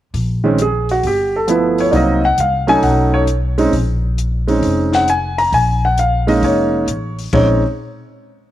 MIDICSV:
0, 0, Header, 1, 4, 480
1, 0, Start_track
1, 0, Key_signature, -5, "minor"
1, 0, Tempo, 450113
1, 149, Time_signature, 4, 2, 24, 8
1, 9079, End_track
2, 0, Start_track
2, 0, Title_t, "Grand piano"
2, 0, Program_c, 0, 0
2, 468, Note_on_c, 0, 51, 63
2, 474, Note_on_c, 0, 56, 59
2, 481, Note_on_c, 0, 60, 53
2, 481, Note_on_c, 0, 61, 68
2, 609, Note_off_c, 0, 51, 0
2, 612, Note_off_c, 0, 56, 0
2, 616, Note_off_c, 0, 60, 0
2, 616, Note_off_c, 0, 61, 0
2, 659, Note_on_c, 0, 68, 62
2, 958, Note_off_c, 0, 68, 0
2, 975, Note_on_c, 0, 66, 68
2, 1113, Note_off_c, 0, 66, 0
2, 1141, Note_on_c, 0, 67, 66
2, 1438, Note_off_c, 0, 67, 0
2, 1452, Note_on_c, 0, 69, 65
2, 1573, Note_on_c, 0, 53, 52
2, 1578, Note_on_c, 0, 57, 47
2, 1589, Note_on_c, 0, 59, 46
2, 1590, Note_off_c, 0, 69, 0
2, 1590, Note_on_c, 0, 64, 59
2, 1610, Note_on_c, 0, 71, 60
2, 1911, Note_off_c, 0, 71, 0
2, 1924, Note_on_c, 0, 73, 71
2, 2040, Note_on_c, 0, 74, 50
2, 2044, Note_on_c, 0, 54, 60
2, 2049, Note_on_c, 0, 58, 56
2, 2054, Note_on_c, 0, 60, 52
2, 2056, Note_off_c, 0, 53, 0
2, 2057, Note_on_c, 0, 63, 63
2, 2059, Note_off_c, 0, 57, 0
2, 2064, Note_off_c, 0, 59, 0
2, 2065, Note_off_c, 0, 64, 0
2, 2065, Note_off_c, 0, 73, 0
2, 2075, Note_off_c, 0, 74, 0
2, 2090, Note_on_c, 0, 75, 70
2, 2344, Note_off_c, 0, 54, 0
2, 2347, Note_off_c, 0, 58, 0
2, 2349, Note_off_c, 0, 60, 0
2, 2351, Note_off_c, 0, 63, 0
2, 2390, Note_off_c, 0, 75, 0
2, 2399, Note_on_c, 0, 78, 87
2, 2542, Note_off_c, 0, 78, 0
2, 2562, Note_on_c, 0, 77, 72
2, 2849, Note_on_c, 0, 54, 68
2, 2850, Note_on_c, 0, 57, 59
2, 2860, Note_on_c, 0, 61, 66
2, 2864, Note_on_c, 0, 63, 70
2, 2865, Note_off_c, 0, 77, 0
2, 2871, Note_on_c, 0, 80, 89
2, 3017, Note_off_c, 0, 80, 0
2, 3024, Note_on_c, 0, 78, 69
2, 3335, Note_off_c, 0, 78, 0
2, 3346, Note_on_c, 0, 73, 83
2, 3437, Note_off_c, 0, 73, 0
2, 3458, Note_off_c, 0, 54, 0
2, 3459, Note_off_c, 0, 57, 0
2, 3464, Note_off_c, 0, 61, 0
2, 3465, Note_off_c, 0, 63, 0
2, 3816, Note_on_c, 0, 56, 61
2, 3824, Note_on_c, 0, 60, 58
2, 3828, Note_on_c, 0, 61, 58
2, 3830, Note_on_c, 0, 63, 70
2, 3957, Note_off_c, 0, 56, 0
2, 3961, Note_off_c, 0, 60, 0
2, 3963, Note_off_c, 0, 61, 0
2, 3964, Note_off_c, 0, 63, 0
2, 4772, Note_on_c, 0, 56, 56
2, 4777, Note_on_c, 0, 60, 49
2, 4784, Note_on_c, 0, 61, 51
2, 4788, Note_on_c, 0, 63, 59
2, 5275, Note_on_c, 0, 78, 86
2, 5379, Note_off_c, 0, 56, 0
2, 5382, Note_off_c, 0, 60, 0
2, 5385, Note_off_c, 0, 61, 0
2, 5387, Note_off_c, 0, 63, 0
2, 5418, Note_off_c, 0, 78, 0
2, 5435, Note_on_c, 0, 80, 70
2, 5740, Note_off_c, 0, 80, 0
2, 5741, Note_on_c, 0, 82, 88
2, 5890, Note_off_c, 0, 82, 0
2, 5909, Note_on_c, 0, 80, 69
2, 6218, Note_off_c, 0, 80, 0
2, 6238, Note_on_c, 0, 78, 71
2, 6380, Note_off_c, 0, 78, 0
2, 6390, Note_on_c, 0, 77, 67
2, 6688, Note_on_c, 0, 56, 60
2, 6695, Note_on_c, 0, 58, 53
2, 6699, Note_off_c, 0, 77, 0
2, 6703, Note_on_c, 0, 61, 55
2, 6705, Note_on_c, 0, 63, 66
2, 6706, Note_on_c, 0, 75, 74
2, 6854, Note_off_c, 0, 75, 0
2, 6873, Note_on_c, 0, 73, 71
2, 7301, Note_off_c, 0, 56, 0
2, 7305, Note_off_c, 0, 58, 0
2, 7308, Note_off_c, 0, 61, 0
2, 7310, Note_off_c, 0, 63, 0
2, 7631, Note_off_c, 0, 73, 0
2, 7816, Note_on_c, 0, 60, 55
2, 7819, Note_on_c, 0, 56, 55
2, 7822, Note_on_c, 0, 73, 73
2, 7823, Note_on_c, 0, 61, 53
2, 7831, Note_on_c, 0, 63, 62
2, 8112, Note_off_c, 0, 60, 0
2, 8114, Note_off_c, 0, 56, 0
2, 8116, Note_off_c, 0, 61, 0
2, 8120, Note_off_c, 0, 63, 0
2, 8125, Note_off_c, 0, 73, 0
2, 9079, End_track
3, 0, Start_track
3, 0, Title_t, "Upright bass"
3, 0, Program_c, 1, 32
3, 147, Note_on_c, 1, 34, 70
3, 1061, Note_off_c, 1, 34, 0
3, 1100, Note_on_c, 1, 31, 69
3, 2016, Note_off_c, 1, 31, 0
3, 2057, Note_on_c, 1, 36, 74
3, 2503, Note_off_c, 1, 36, 0
3, 2539, Note_on_c, 1, 36, 65
3, 2984, Note_off_c, 1, 36, 0
3, 3011, Note_on_c, 1, 35, 73
3, 3929, Note_off_c, 1, 35, 0
3, 3976, Note_on_c, 1, 34, 73
3, 4892, Note_off_c, 1, 34, 0
3, 4930, Note_on_c, 1, 29, 78
3, 5850, Note_off_c, 1, 29, 0
3, 5890, Note_on_c, 1, 34, 78
3, 6812, Note_off_c, 1, 34, 0
3, 6850, Note_on_c, 1, 29, 72
3, 7301, Note_off_c, 1, 29, 0
3, 7332, Note_on_c, 1, 33, 65
3, 7783, Note_off_c, 1, 33, 0
3, 7816, Note_on_c, 1, 34, 78
3, 8122, Note_off_c, 1, 34, 0
3, 9079, End_track
4, 0, Start_track
4, 0, Title_t, "Drums"
4, 148, Note_on_c, 9, 36, 29
4, 150, Note_on_c, 9, 46, 41
4, 255, Note_off_c, 9, 36, 0
4, 257, Note_off_c, 9, 46, 0
4, 623, Note_on_c, 9, 42, 46
4, 730, Note_off_c, 9, 42, 0
4, 950, Note_on_c, 9, 46, 32
4, 1057, Note_off_c, 9, 46, 0
4, 1102, Note_on_c, 9, 36, 28
4, 1102, Note_on_c, 9, 46, 40
4, 1209, Note_off_c, 9, 36, 0
4, 1209, Note_off_c, 9, 46, 0
4, 1578, Note_on_c, 9, 42, 48
4, 1685, Note_off_c, 9, 42, 0
4, 1902, Note_on_c, 9, 46, 35
4, 2008, Note_off_c, 9, 46, 0
4, 2057, Note_on_c, 9, 36, 29
4, 2057, Note_on_c, 9, 46, 41
4, 2163, Note_off_c, 9, 46, 0
4, 2164, Note_off_c, 9, 36, 0
4, 2536, Note_on_c, 9, 42, 49
4, 2643, Note_off_c, 9, 42, 0
4, 2859, Note_on_c, 9, 46, 34
4, 2966, Note_off_c, 9, 46, 0
4, 3015, Note_on_c, 9, 36, 28
4, 3015, Note_on_c, 9, 46, 39
4, 3121, Note_off_c, 9, 36, 0
4, 3122, Note_off_c, 9, 46, 0
4, 3491, Note_on_c, 9, 42, 45
4, 3598, Note_off_c, 9, 42, 0
4, 3821, Note_on_c, 9, 46, 36
4, 3927, Note_off_c, 9, 46, 0
4, 3974, Note_on_c, 9, 36, 28
4, 3978, Note_on_c, 9, 46, 41
4, 4081, Note_off_c, 9, 36, 0
4, 4084, Note_off_c, 9, 46, 0
4, 4459, Note_on_c, 9, 42, 50
4, 4566, Note_off_c, 9, 42, 0
4, 4781, Note_on_c, 9, 46, 35
4, 4888, Note_off_c, 9, 46, 0
4, 4931, Note_on_c, 9, 36, 30
4, 4934, Note_on_c, 9, 46, 41
4, 5038, Note_off_c, 9, 36, 0
4, 5041, Note_off_c, 9, 46, 0
4, 5254, Note_on_c, 9, 38, 38
4, 5360, Note_off_c, 9, 38, 0
4, 5415, Note_on_c, 9, 42, 47
4, 5522, Note_off_c, 9, 42, 0
4, 5742, Note_on_c, 9, 46, 33
4, 5848, Note_off_c, 9, 46, 0
4, 5890, Note_on_c, 9, 36, 29
4, 5894, Note_on_c, 9, 46, 39
4, 5997, Note_off_c, 9, 36, 0
4, 6001, Note_off_c, 9, 46, 0
4, 6373, Note_on_c, 9, 42, 46
4, 6480, Note_off_c, 9, 42, 0
4, 6699, Note_on_c, 9, 46, 33
4, 6806, Note_off_c, 9, 46, 0
4, 6851, Note_on_c, 9, 36, 29
4, 6854, Note_on_c, 9, 46, 38
4, 6957, Note_off_c, 9, 36, 0
4, 6960, Note_off_c, 9, 46, 0
4, 7334, Note_on_c, 9, 42, 48
4, 7441, Note_off_c, 9, 42, 0
4, 7663, Note_on_c, 9, 46, 35
4, 7770, Note_off_c, 9, 46, 0
4, 7815, Note_on_c, 9, 43, 91
4, 7815, Note_on_c, 9, 53, 70
4, 7816, Note_on_c, 9, 36, 82
4, 7922, Note_off_c, 9, 43, 0
4, 7922, Note_off_c, 9, 53, 0
4, 7923, Note_off_c, 9, 36, 0
4, 9079, End_track
0, 0, End_of_file